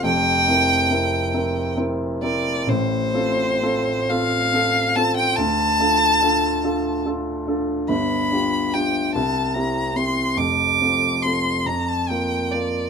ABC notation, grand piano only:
X:1
M:6/8
L:1/8
Q:3/8=47
K:F
V:1 name="Grand piano"
[F,,,F,,] [CEB] [CEB] [CEB] [CEB] [CEB] | [A,,,A,,] [CFA] [CFA] [CFA] [CFA] [CFA] | D,, [DFA] [DFA] [DFA] [DFA] [DFA] | [G,,,G,,] [DFG] [DFG] C,, [CEG] [CEG] |
[F,,,F,,] [CFA] [CFA] F,, [B,FB] [B,FB] |]